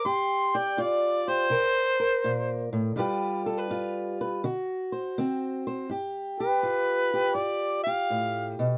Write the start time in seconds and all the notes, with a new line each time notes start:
0.05 G2 G4 C6
0.55 D5 G5
0.77 G2 F4 D5
1.28 G4 C5
1.50 C3 A#4
2.00 A#4
2.24 A#2
2.73 A2
2.96 G2 G3 F4 G4 B4
3.46 A4
3.58 B4
3.70 G2 F4
4.21 B4
4.44 D3 F#4
4.92 C5
5.18 D3 C4
5.67 C5
5.89 G2 G4
6.40 G4 B4
6.63 G2 F4
7.14 G4
7.35 G2 D5
7.83 G4 F5
8.10 A2
8.59 B2